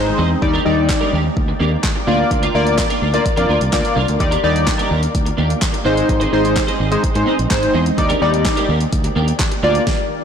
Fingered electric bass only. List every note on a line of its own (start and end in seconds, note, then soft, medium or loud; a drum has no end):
0.00 0.10 G#1 medium
0.19 0.34 E2 medium
0.42 0.57 D#2 loud
0.66 0.89 D#2 medium
1.13 1.28 D#2 medium
1.37 1.52 D2 loud
1.60 1.75 D#2 loud
2.08 2.23 D2 loud
2.31 2.46 D2 loud
2.55 2.77 D2 loud
3.02 3.17 D2 medium
3.37 3.45 F2 medium
3.49 3.57 D2 medium
3.61 3.69 C2 medium
3.73 3.80 D2 medium
3.97 4.04 C2 medium
4.08 4.16 D2 medium
4.20 4.35 D#2 loud
4.44 4.66 D#2 loud
4.91 5.06 D#2 medium
5.15 5.30 D2 medium
5.38 5.53 D#2 medium
5.86 6.01 G#1 loud
6.09 6.24 G#1 loud
6.33 6.55 G#1 medium
6.80 6.95 G#1 medium
7.04 muted fingered electric bass stroke soft
7.15 7.23 G#2 medium
7.39 7.47 A#1 medium
7.51 7.66 G#1 medium
7.74 7.90 E2 medium
7.98 8.13 D#2 loud
8.22 8.44 D#2 medium
8.69 8.84 D#2 loud
8.93 9.08 D2 medium
9.16 9.31 D#2 medium
9.63 9.78 D2 loud